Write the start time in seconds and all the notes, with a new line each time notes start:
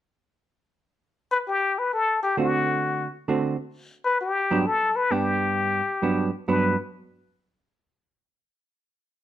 1.31 B4
1.48 G4
1.79 B4
1.93 A4
2.23 G4
2.37 D3 A3 C4 F#4
3.28 D3 A3 C4 F#4
4.05 B4
4.21 G4
4.51 G2 F#3 B3 D4
4.66 A4
4.96 B4
5.11 G2 B3 D4 G4
6.02 G2 F#3 B3 D4
6.48 G2 F#3 B3 D4 B4